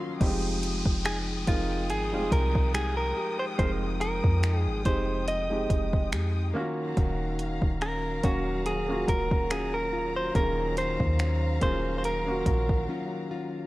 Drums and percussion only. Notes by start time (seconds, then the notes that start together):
0.21 kick, closed hi-hat
0.63 closed hi-hat
0.86 kick
1.05 finger snap, closed hi-hat
1.47 kick, closed hi-hat
1.90 closed hi-hat
2.32 kick, closed hi-hat
2.55 kick
2.74 finger snap, closed hi-hat
3.59 kick, closed hi-hat
4.01 closed hi-hat
4.24 kick
4.43 finger snap, closed hi-hat
4.85 kick, closed hi-hat
5.28 closed hi-hat
5.70 kick, closed hi-hat
5.93 kick
6.12 finger snap, closed hi-hat
6.97 kick, closed hi-hat
7.39 closed hi-hat
7.62 kick
7.81 finger snap, closed hi-hat
8.24 kick, closed hi-hat
8.66 closed hi-hat
9.08 kick, closed hi-hat
9.31 kick
9.51 finger snap, closed hi-hat
10.35 kick, closed hi-hat
10.77 closed hi-hat
11.00 kick
11.19 finger snap, closed hi-hat
11.61 kick, closed hi-hat
12.04 closed hi-hat
12.46 kick, closed hi-hat
12.69 kick